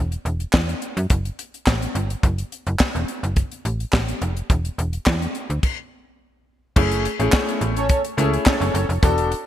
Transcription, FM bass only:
Already playing: E1
0.25 E1
0.54 E2
0.97 F#2
1.10 F#1
1.67 A1
1.95 G1
2.23 F#1
2.67 F#1
2.95 E1
3.23 F#1
3.65 A1
3.93 A1
4.22 F1
4.50 E1
4.78 E1
5.07 E2
5.50 D2
6.76 F#1
7.20 A1
7.61 A1
8.18 C#2
8.61 F#1
8.74 F#1
8.89 F1
9.03 E1

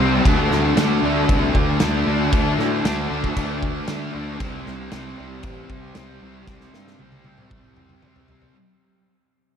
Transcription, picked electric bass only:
0.00 C2
0.26 D2
0.51 D2
0.76 D2
1.02 D2
1.29 C2
1.55 D2
1.81 D2
2.07 D2
2.33 D2
2.58 A2
2.84 D2
3.11 D2
3.37 D2
3.88 D3
4.15 D2
4.41 C2
4.67 C2
4.93 C2
5.19 C2
5.44 A1
5.70 C2
5.96 C2
6.22 C2
6.48 C2
6.74 G2
7.00 C2
7.26 C2
7.51 C2
8.04 C3
8.29 C2

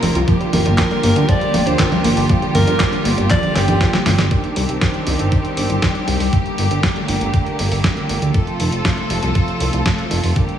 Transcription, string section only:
Already playing: C3 F3 A#3 F4 A#4
0.28 D3 G3 F4 G4
4.31 D#3 G3 C4 D4 G4
6.33 D3 A3 A#3
8.34 C3 F3 F4 A4
10.36 D3 G3 A#3 G4

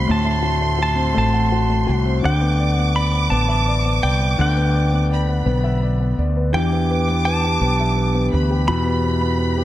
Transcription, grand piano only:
Already playing: A3 C4 F#4 F#5
0.07 A2
0.25 A3
0.43 F#4
0.60 A3
0.78 F#4
0.95 C4
1.14 A3
1.34 F#5
1.52 F#4
1.69 A3
1.87 F#4
2.06 C4
2.23 D3
2.41 B3
2.59 D5
2.78 B3
2.96 D5
3.13 B4
3.31 B3
3.49 E5
3.67 D5
3.85 B3
4.03 D5
4.21 B4
4.38 D3
4.57 B3
4.74 D5
4.93 B3
5.11 D5
5.29 B4
5.45 B3
5.64 E5
5.83 D5
6.00 B3
6.18 D5
6.37 B4
6.54 E3
6.73 B3
6.91 B4
7.10 B3
7.27 B4
7.44 G4
7.62 B3
7.80 E5
7.97 B4
8.15 B3
8.33 B4
8.50 G4
8.68 B2
8.86 B3
9.04 B4
9.22 B3
9.38 B4
9.57 G4

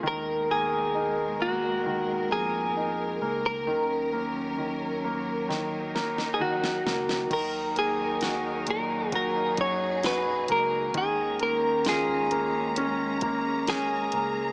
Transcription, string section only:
0.04 B2 G#3 A#4
3.68 F#3 C#4
5.49 D#4
7.30 F#3 D#4 A#4
9.14 G#4
10.95 G#3 C#4 A#5

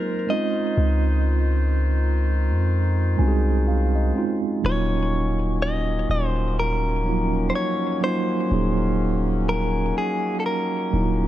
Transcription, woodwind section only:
Already playing: G#3 F4 C5
0.28 D#3 D#4
4.63 D#3 F#3 A#3 C#4

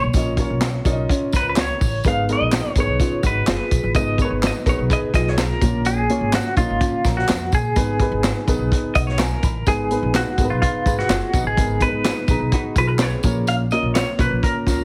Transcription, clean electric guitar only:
Already playing: C#5
1.36 B4
1.49 B4
1.60 C#5
2.08 F5
2.33 D#5
2.80 C#5
3.27 B4
3.96 D#5
4.22 C#5
4.47 D#5
4.69 C#5
4.93 D#5
5.15 D#5
5.29 C#5
5.39 A#4
5.86 G#4
6.35 F#4
6.57 F4
7.17 F#4
7.55 G#4
8.95 D#5
9.07 C#5
9.19 A#4
9.68 G#4
10.16 F#4
10.50 F4
10.62 F4
10.99 F#4
11.47 G#4
11.82 B4
12.78 B4
12.87 A#4 B4
13.02 C#5
13.48 F5
13.72 D#5
13.94 C#5
14.20 B4
14.44 A#4

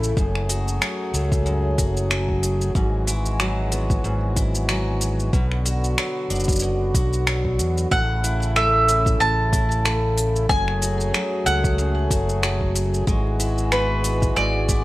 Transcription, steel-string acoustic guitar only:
Already playing: A2 A3 C#4 E4
0.17 F#2
0.49 F#4
0.81 F#3
1.14 A3
1.46 F#2
1.78 F#4
2.10 F#3
2.75 G#2
3.07 E4
3.40 F#3
3.72 B3
4.04 G#2
4.37 E4
4.69 F#3
5.33 B2
5.65 F#4
5.98 F#3
6.30 D4
6.62 B2
6.94 F#4
7.27 F#3
7.91 A2
8.24 E4
8.56 A3
8.88 C#4
9.20 A2
9.53 E4
9.85 A3
10.49 F#2
10.82 F#4
11.14 F#3
11.46 A3
11.78 F#2
12.10 F#4
12.43 F#3
13.07 G#3
13.39 E4
13.72 B3
14.04 B3
14.36 G#3
14.69 E4

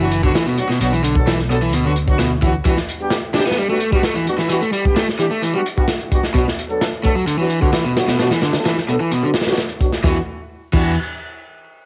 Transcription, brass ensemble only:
0.00 F#3 B3 D4 F#4
0.23 F#3 B3 D4 F#4
0.58 F#3 B3 D4 F#4
0.81 F#3 B3 D4 F#4
1.16 F#3 B3 D4 A4
1.50 F#3 B3 D4 A4
1.85 F#3 B3 D4 F#4
2.08 F#3 B3 D4 F#4
2.42 F#3 B3 D4 F#4
2.65 G3 B3 D4 F#4
3.00 G3 B3 D4 G4
3.34 G3 B3 D4 G4
3.69 G3 B3 D4 F#4
3.92 G3 B3 D4 F#4
4.27 G3 B3 D4 F#4
4.50 G3 B3 D4 F#4
4.84 G3 B3 D4 G4
5.19 G3 B3 D4 G4
5.54 G3 B3 D4 F#4
5.77 G3 B3 D4 F#4
6.11 G3 B3 D4 F#4
6.34 F#3 B3 D4 F#4
6.69 F#3 B3 D4 A4
7.03 F#3 B3 D4 A4
7.38 F#3 B3 D4 F#4
7.61 F#3 B3 D4 F#4
7.96 F#3 B3 D4 F#4
8.19 F#3 B3 D4 F#4
8.54 F#3 B3 D4 A4
8.89 F#3 B3 D4 A4
9.23 F#3 B3 D4 F#4
9.46 F#3 B3 D4 F#4
9.81 F#3 B3 D4 F#4
10.04 G3 B3 D4 F#4
10.73 G3 B3 D4 F#4

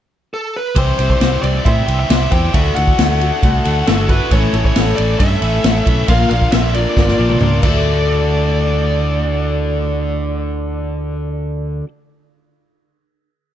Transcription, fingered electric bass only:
0.76 C2
0.99 C2
1.20 C2
1.43 C2
1.66 A2
1.88 C2
2.10 C2
2.32 E2
2.54 D2
2.77 D2
2.99 D2
3.43 C2
3.66 D2
3.88 G1
4.31 A1
4.53 A1
4.76 A1
4.99 A1
5.20 G2
5.42 A1
5.64 A1
5.87 B1
6.08 A#1
6.31 A#1
6.53 A#1
6.97 G1
7.19 A#1
7.42 C#2
7.63 D2

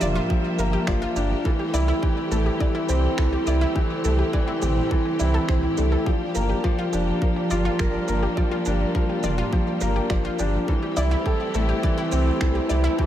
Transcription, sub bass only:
0.01 F1
0.58 G1
0.88 G1
1.16 G1
1.73 C2
2.31 A1
2.89 C2
3.18 C2
3.47 C2
4.05 C2
4.62 A1
5.20 C2
5.49 C2
5.78 C2
6.36 G1
6.93 F1
7.51 G1
7.79 G1
8.08 G1
8.66 G1
9.24 F1
9.81 G1
10.10 G1
10.39 G1
10.97 C2
11.54 A1
12.12 C2
12.41 C2
12.70 C2

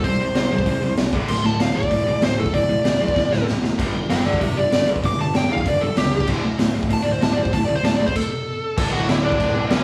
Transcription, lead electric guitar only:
0.04 C5
1.29 C6
1.46 A5
1.61 F5
1.76 D5
2.24 C5
2.40 A4
2.54 D5
4.10 B4 G5
4.25 D5 F#5
4.40 G4 E5
4.57 D5
5.06 D6
5.21 A5
5.36 G5
5.52 F5
5.68 D5
5.82 A4
5.98 G4
6.93 A5
7.02 D5
7.12 C5
7.23 A5
7.33 D5
7.42 C5
7.53 A5
7.65 D5
7.75 C5
7.85 A5
7.95 D5
8.06 C5
8.16 A4
8.78 A4 A5
8.93 F#4 F#5
9.09 E4 E5
9.24 D4 D5
9.72 C#4 C#5

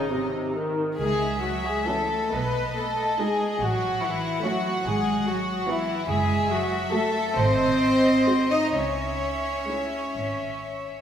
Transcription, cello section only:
Already playing: D#3
1.00 G#3
1.44 F#3
1.67 G#3
1.88 A3
2.32 B3
2.76 A3
3.19 G#3
3.61 F#3
4.03 E3
4.45 F#3
4.87 G#3
5.28 F#3
5.69 E3
6.10 G#3
6.50 F#3
6.93 A3
7.37 C4
8.51 D#4
8.74 C#4

